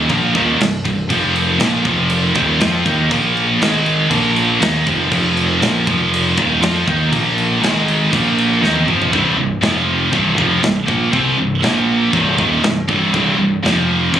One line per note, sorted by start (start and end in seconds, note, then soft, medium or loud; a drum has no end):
0.09 0.33 A#1 loud
0.09 0.33 A#2 medium
0.09 0.34 F3 loud
0.09 0.34 A#3 medium
0.09 kick loud
0.09 crash medium
0.34 0.58 D#1 loud
0.34 0.58 D#2 loud
0.34 0.58 A#2 loud
0.34 0.59 D#3 medium
0.34 kick loud
0.34 crash medium
0.59 0.83 C1 medium
0.59 0.79 C2 medium
0.59 0.80 G2 medium
0.59 snare loud
0.59 crash medium
0.84 1.08 C1 medium
0.84 1.04 C2 medium
0.84 1.05 G2 medium
0.84 kick loud
0.84 crash medium
1.09 1.56 F1 loud
1.09 1.58 F2 loud
1.09 1.59 C3 loud
1.09 1.59 F3 loud
1.09 kick loud
1.09 crash medium
1.36 crash medium
1.59 1.83 A#1 medium
1.59 1.83 A#2 medium
1.59 1.84 F3 loud
1.59 1.84 A#3 loud
1.59 snare loud
1.59 crash medium
1.84 2.31 F1 medium
1.84 2.33 F2 medium
1.84 2.33 C3 medium
1.84 2.34 F3 loud
1.84 kick loud
1.84 crash medium
2.10 crash medium
2.34 2.58 D#1 medium
2.34 2.58 D#2 medium
2.34 2.59 A#2 loud
2.34 2.59 D#3 medium
2.34 kick loud
2.34 crash medium
2.60 2.84 F2 medium
2.60 2.84 F3 loud
2.60 2.84 C4 medium
2.60 2.85 F4 medium
2.60 snare loud
2.60 crash medium
2.84 3.09 D#2 loud
2.84 3.09 D#3 loud
2.84 3.09 A#3 loud
2.84 3.09 D#4 loud
2.84 kick loud
2.84 crash medium
3.10 3.57 A#1 loud
3.10 3.59 A#2 loud
3.10 3.59 F3 loud
3.10 3.60 A#3 loud
3.10 kick loud
3.10 crash medium
3.37 crash medium
3.59 4.07 G#1 medium
3.59 4.09 G#2 loud
3.59 4.09 D#3 loud
3.59 4.09 G#3 loud
3.59 snare loud
3.59 crash medium
3.86 crash medium
4.10 4.57 A#1 loud
4.10 4.59 A#2 medium
4.10 4.59 F3 medium
4.10 4.59 A#3 medium
4.10 kick loud
4.10 crash medium
4.36 crash medium
4.59 4.84 D#2 medium
4.59 4.84 D#3 medium
4.59 4.84 A#3 loud
4.59 4.85 D#4 loud
4.59 snare loud
4.59 crash medium
4.84 5.10 F1 loud
4.84 5.08 F2 medium
4.84 5.09 C3 loud
4.84 5.09 F3 loud
4.84 kick loud
4.84 crash medium
5.09 5.58 F1 loud
5.09 5.59 F2 loud
5.09 5.59 C3 loud
5.09 5.59 F3 loud
5.09 kick loud
5.13 crash loud
5.37 crash medium
5.59 5.84 A#1 loud
5.59 5.84 A#2 loud
5.59 5.84 F3 loud
5.59 5.85 A#3 loud
5.59 crash medium
5.63 snare loud
5.86 6.33 F1 loud
5.86 6.35 F2 loud
5.86 6.36 C3 loud
5.86 6.36 F3 loud
5.86 kick loud
5.86 crash medium
6.14 crash medium
6.36 6.60 D#1 loud
6.36 6.60 D#2 loud
6.36 6.60 A#2 medium
6.36 6.60 D#3 medium
6.36 kick loud
6.36 crash medium
6.61 6.84 F2 loud
6.61 6.85 F3 loud
6.61 6.85 C4 loud
6.61 6.86 F4 loud
6.61 snare loud
6.61 crash medium
6.85 7.10 D#2 loud
6.85 7.10 D#3 loud
6.85 7.10 A#3 loud
6.85 7.10 D#4 loud
6.85 kick loud
6.85 crash medium
7.10 7.59 A#1 loud
7.10 7.59 A#2 loud
7.10 7.60 F3 loud
7.10 7.60 A#3 loud
7.10 kick loud
7.10 crash medium
7.38 crash medium
7.60 8.07 G#1 loud
7.60 8.10 G#2 medium
7.60 8.10 D#3 loud
7.60 8.10 G#3 loud
7.60 crash medium
7.64 snare loud
7.88 crash medium
8.10 8.59 A#1 loud
8.10 8.60 A#2 medium
8.10 8.60 F3 medium
8.10 8.60 A#3 loud
8.10 kick loud
8.10 crash medium
8.38 crash medium
8.61 8.85 D#2 medium
8.61 8.85 D#3 medium
8.61 8.86 A#3 loud
8.61 8.86 D#4 loud
8.61 snare medium
8.76 high tom medium
8.85 9.09 F1 medium
8.85 9.10 F2 loud
8.85 9.10 C3 loud
8.85 9.11 F3 loud
8.85 mid tom loud
9.02 floor tom loud
9.12 9.36 C1 loud
9.12 9.36 C2 loud
9.12 9.36 G2 loud
9.12 9.36 C3 loud
9.12 kick loud
9.12 china medium
9.37 9.60 C1 medium
9.37 9.57 C2 medium
9.37 9.57 G2 medium
9.61 10.08 F1 medium
9.61 10.11 F2 medium
9.61 10.11 C3 medium
9.61 10.11 F3 loud
9.61 snare loud
9.61 china medium
10.12 10.35 C1 loud
10.12 10.36 C2 medium
10.12 10.36 G2 loud
10.12 10.36 C3 medium
10.12 kick loud
10.12 china medium
10.36 10.61 F1 loud
10.36 10.61 F2 medium
10.36 10.61 C3 loud
10.36 10.61 F3 loud
10.36 kick loud
10.61 10.86 C1 medium
10.61 10.81 C2 medium
10.61 10.82 G2 medium
10.61 snare loud
10.61 china medium
10.86 11.11 A#1 loud
10.86 11.11 A#2 medium
10.86 11.11 F3 loud
10.86 11.11 A#3 loud
10.86 kick loud
11.11 11.36 C2 loud
11.11 11.36 C3 loud
11.11 11.36 G3 loud
11.11 11.36 C4 loud
11.11 kick loud
11.11 china medium
11.37 11.60 C1 medium
11.37 11.57 C2 medium
11.37 11.57 G2 medium
11.62 12.08 A#1 medium
11.62 12.11 A#2 loud
11.62 12.12 F3 loud
11.62 12.12 A#3 loud
11.62 snare loud
11.62 china medium
12.12 12.36 C1 loud
12.12 12.36 C2 medium
12.12 12.37 G2 loud
12.12 12.37 C3 loud
12.12 kick loud
12.12 china medium
12.37 12.61 D#1 loud
12.37 12.62 D#2 medium
12.37 12.62 A#2 loud
12.37 12.62 D#3 loud
12.37 kick loud
12.62 12.86 C1 medium
12.62 12.83 C2 medium
12.62 12.83 G2 medium
12.62 snare loud
12.62 china medium
12.88 13.11 C1 loud
12.88 13.11 C2 loud
12.88 13.11 G2 loud
12.88 13.12 C3 loud
12.88 kick loud
13.12 13.37 C1 loud
13.12 13.36 C2 loud
13.12 13.37 G2 loud
13.12 13.37 C3 loud
13.12 kick loud
13.12 china medium
13.38 13.61 C1 medium
13.38 13.58 C2 medium
13.38 13.58 G2 medium
13.62 14.09 F1 loud
13.62 14.12 F2 loud
13.62 14.13 C3 loud
13.62 14.13 F3 loud
13.62 snare loud
13.62 china medium
14.13 14.20 C1 loud
14.13 14.20 C2 medium
14.13 14.20 G2 medium
14.13 14.20 C3 loud
14.13 kick loud
14.13 china medium